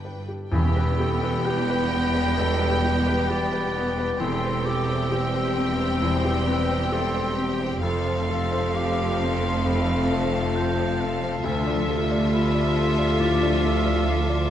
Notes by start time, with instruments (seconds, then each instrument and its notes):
Already playing: cello section G2, harp G2 D3 B3 A4, felt piano D3 B3 G4 A4 B4 G5, viola section D4, violin section B4 G5
0.05 felt piano B4
0.21 harp A4
0.28 felt piano G4
0.51 double bass section E1, felt piano E2, timpani E2, harp E2, cello section E2, french horn section G3 B3, viola section B3, violin section G4 G5, clarinet G4, oboe E5, flute B5
0.76 felt piano B4
0.84 harp B2
0.98 felt piano G4, clarinet A4
1.14 harp B3
1.23 felt piano B4
1.45 felt piano G4, clarinet B4, harp B4, oboe G5
1.70 felt piano B4
1.89 felt piano B3, clarinet B4
2.07 harp B4
2.15 felt piano B4
2.37 harp E2, felt piano B2, clarinet A4, oboe G5
2.61 felt piano B4
2.68 harp B2
2.82 clarinet G4, felt piano G4
2.98 harp B3
3.07 felt piano B4
3.28 felt piano G4, harp B4, clarinet B4, oboe D5, flute B5
3.52 felt piano B4
3.74 felt piano B3
3.89 harp B4
3.98 felt piano B4
4.18 double bass section E1, harp E2, felt piano E2, cello section E2, french horn section G3 C4, viola section C4, violin section G4 G5, clarinet A4, oboe E5, flute C6
4.43 felt piano C5
4.50 harp E3
4.65 felt piano G4, flute D6
4.80 harp C4
4.89 felt piano C5
5.11 harp G4, clarinet G4, felt piano G4, flute E6
5.34 felt piano C5
5.41 harp C4
5.57 felt piano C4
5.71 harp G4
5.80 felt piano C5
6.01 harp E2, felt piano E2, clarinet C5
6.25 felt piano G4
6.31 harp E3
6.47 felt piano C4, clarinet B4
6.62 harp C4
6.69 felt piano C5
6.92 harp G4, felt piano G4, clarinet A4, oboe E5, flute C6
7.14 felt piano C5
7.22 harp C4
7.37 felt piano C4, clarinet G4
7.52 harp G4
7.61 felt piano C5
7.82 double bass section F1, harp F2, felt piano F2, cello section F2, french horn section A3 C4, viola section C4, clarinet A4, violin section A4 F5, oboe F5, flute C6
8.06 felt piano C5
8.14 harp C3
8.29 felt piano A4, clarinet A4
8.44 harp C4
8.52 felt piano C5
8.74 felt piano F4, clarinet G4, harp A4, flute D6
8.97 felt piano C5
9.05 harp F4
9.20 felt piano C4, flute C6
9.35 harp A4
9.43 felt piano C5
9.64 harp F2, felt piano C3, clarinet F4, flute B5
9.90 felt piano C5
9.96 harp C3
10.11 felt piano A4, flute A5
10.26 harp C4
10.33 felt piano C5
10.56 felt piano F4, harp A4, oboe G5
10.78 felt piano C5
10.84 harp F4
10.99 felt piano C4, oboe F5
11.15 harp A4
11.22 felt piano C5
11.43 felt piano D2, double bass section D2, cello section D2, harp D3, french horn section F3 F4, viola section F4, violin section A4 E5, clarinet A4, oboe E5
11.67 felt piano D5
11.74 harp F3
11.89 clarinet G4, felt piano A4
12.02 harp A4
12.11 felt piano D5
12.31 harp F4, felt piano F4, oboe E5, flute B5
12.54 felt piano D5
12.61 harp D5
12.77 felt piano D4, flute C6
12.89 harp F4
12.98 felt piano D5
13.19 felt piano A2, harp D3, oboe D5, flute D6
13.43 felt piano D5
13.49 harp F3
13.64 felt piano A4, oboe E5
13.78 harp A4
13.86 felt piano D5
14.07 clarinet F4, felt piano F4, harp F4, oboe F5, flute D6
14.29 felt piano D5
14.37 harp D5